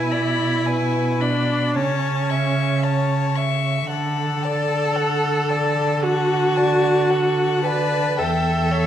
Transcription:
Already playing: cello B2, viola E4, violin B4 G#5
0.11 violin D5 B5
0.66 violin B4 G#5
1.20 viola D4, violin D5 B5
1.75 cello C#3, viola C#4, violin C#5 A5
2.30 violin E5 C#6
2.83 violin C#5 A5
3.36 violin E5 C#6
3.90 cello D3, viola A4, violin A4 F#5
4.43 violin D5 A5
4.96 violin A4 F#5
5.49 violin D5 A5
6.03 viola F#4, violin A4 F#5
6.57 violin D5 A5
7.10 violin A4 F#5
7.64 viola B4, violin D5 A5
8.18 cello E2, viola A4, violin E5 G5
8.72 violin C#5 E5

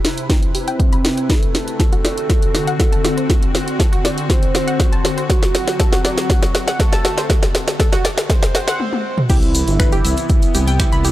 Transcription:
Already playing: ambient pad C3 E4 B4
0.05 synth arpeggio sound E5, snare, open hi-hat
0.18 closed hi-hat
0.30 analog synth lead C4, kick, snare, closed hi-hat
0.43 closed hi-hat
0.55 synth arpeggio sound G4, open hi-hat
0.68 synth arpeggio sound G5, closed hi-hat
0.80 synth arpeggio sound G4, kick, closed hi-hat
0.93 synth arpeggio sound B5, closed hi-hat
1.05 synth arpeggio sound G4, snare, open hi-hat
1.18 synth arpeggio sound C5, closed hi-hat
1.30 ambient pad D3 C4 F#4, synth arpeggio sound F#4, analog synth lead A4, kick, snare, closed hi-hat
1.43 closed hi-hat
1.55 snare, open hi-hat
1.68 closed hi-hat
1.80 synth arpeggio sound A4, kick, snare, closed hi-hat
1.92 synth arpeggio sound F#4, closed hi-hat
2.05 synth arpeggio sound D5, snare, open hi-hat
2.18 closed hi-hat
2.30 kick, snare, closed hi-hat
2.42 closed hi-hat
2.55 synth arpeggio sound F#4, snare, open hi-hat
2.67 synth arpeggio sound F#5, closed hi-hat
2.80 synth arpeggio sound F#4, analog synth lead A4, kick, snare, closed hi-hat
2.92 synth arpeggio sound A5, closed hi-hat
3.05 synth arpeggio sound F#4, snare, open hi-hat
3.17 synth arpeggio sound C5, closed hi-hat
3.29 synth arpeggio sound F#4, kick, snare, closed hi-hat
3.43 closed hi-hat
3.55 snare, open hi-hat
3.68 closed hi-hat
3.80 synth arpeggio sound A4, kick, snare, closed hi-hat
3.92 synth arpeggio sound F#4, closed hi-hat
4.05 synth arpeggio sound D5, snare, open hi-hat
4.18 closed hi-hat
4.30 analog synth lead C5, kick, snare, closed hi-hat
4.43 closed hi-hat
4.55 synth arpeggio sound F#4, snare, open hi-hat
4.67 synth arpeggio sound F#5, closed hi-hat
4.80 synth arpeggio sound F#4, kick, snare, closed hi-hat
4.92 synth arpeggio sound A5, closed hi-hat
5.05 synth arpeggio sound F#4, snare, open hi-hat
5.17 synth arpeggio sound C5, closed hi-hat
5.30 synth arpeggio sound F#4, analog synth lead F#4, kick, snare, closed hi-hat
5.43 snare, closed hi-hat
5.55 snare, open hi-hat
5.68 snare, closed hi-hat
5.80 synth arpeggio sound A4, kick, snare, closed hi-hat
5.92 synth arpeggio sound F#4, snare, closed hi-hat
6.05 synth arpeggio sound D5, snare, open hi-hat
6.18 snare, closed hi-hat
6.30 kick, snare, closed hi-hat
6.43 snare, closed hi-hat
6.55 synth arpeggio sound F#4, snare, open hi-hat
6.67 synth arpeggio sound F#5, snare, closed hi-hat
6.80 synth arpeggio sound F#4, analog synth lead A4, kick, snare, closed hi-hat
6.92 synth arpeggio sound A5, snare, closed hi-hat
7.05 synth arpeggio sound F#4, snare, open hi-hat
7.17 synth arpeggio sound C5, snare, closed hi-hat
7.30 synth arpeggio sound F#4, kick, snare, closed hi-hat
7.43 snare, closed hi-hat
7.55 snare, open hi-hat
7.68 snare, closed hi-hat
7.79 synth arpeggio sound A4, kick, snare, closed hi-hat
7.92 synth arpeggio sound F#4, snare, closed hi-hat
8.04 synth arpeggio sound D5, snare, open hi-hat
8.18 snare, closed hi-hat
8.30 analog synth lead C5, kick, snare, closed hi-hat
8.43 snare, closed hi-hat
8.55 synth arpeggio sound F#4, snare, open hi-hat
8.67 synth arpeggio sound F#5, snare, closed hi-hat
8.80 high tom
8.93 high tom
9.18 mid tom
9.30 detuned saw bass C2, ambient pad C3 B3 E4, analog synth lead E4, synth arpeggio sound G4, kick, closed hi-hat, crash, shaker
9.42 closed hi-hat, shaker
9.55 open hi-hat, shaker
9.68 detuned saw bass G1, closed hi-hat, shaker
9.80 synth arpeggio sound B4, finger snap, kick, closed hi-hat, shaker
9.92 synth arpeggio sound G4, closed hi-hat, shaker
10.05 detuned saw bass C2, synth arpeggio sound E5, open hi-hat, shaker
10.17 closed hi-hat, shaker
10.29 kick, closed hi-hat, shaker
10.42 closed hi-hat, shaker
10.55 detuned saw bass C2, synth arpeggio sound G4, open hi-hat, shaker
10.68 synth arpeggio sound G5, closed hi-hat, shaker
10.79 analog synth lead E4, synth arpeggio sound G4, finger snap, kick, closed hi-hat, shaker
10.92 detuned saw bass C2, synth arpeggio sound B5, closed hi-hat, shaker
11.04 synth arpeggio sound G4, open hi-hat, shaker

